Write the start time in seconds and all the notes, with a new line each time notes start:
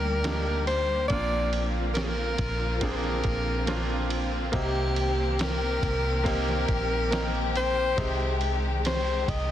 Already playing: D2 G3 A#3 D4 D#4 G4 A#4 D5
0.24 A#3 D4 D#4 G4, snare, ride
0.67 C5, ride
1.08 A#1 A#2 A#3 C4 D4 D5, kick, ride
1.12 D3 C4 F4
1.53 ride
1.94 A#4, snare, ride
2.03 G#4
2.09 A#4
2.38 A#1, kick, ride
2.81 A#3 C4 D4 G#4 A#4, kick, ride
2.91 C5
2.96 A#4
3.04 snare
3.24 A#1, kick, ride
3.67 A#3 C4 D4 F4, snare, ride
4.10 ride
4.52 C2 C3 D#3 A#3 C4 D#4 G4, kick, ride
4.96 ride
5.39 A#4, snare, ride
5.82 C2, kick, ride
6.24 A#3 C4 D#4 G4 A#4, kick, ride
6.49 snare
6.68 A#1, kick, ride
7.11 A#3 C4 D#4 A#4, snare, ride
7.56 C5, ride
7.97 C2 C3 D#3 G#3 C4 D#4 G4, kick, ride
8.41 ride
8.85 C5, snare, ride
9.28 C2 D#5, kick, ride